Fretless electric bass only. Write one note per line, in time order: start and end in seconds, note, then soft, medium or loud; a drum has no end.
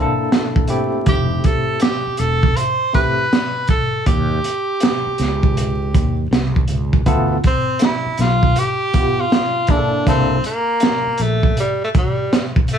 1.07 1.39 F1 loud
2.07 muted fretless electric bass stroke soft
2.19 2.51 E1 medium
4.07 4.38 D#2 loud
5.07 muted fretless electric bass stroke soft
5.19 5.95 C#2 medium
5.95 6.26 D#2 medium
6.31 6.63 C2 medium
6.69 7.01 C#2 medium
7.07 7.38 D2 loud
8.06 muted fretless electric bass stroke soft
8.19 8.51 B1 medium
10.07 10.39 C2 loud
11.07 muted fretless electric bass stroke soft
11.19 11.51 A#1 medium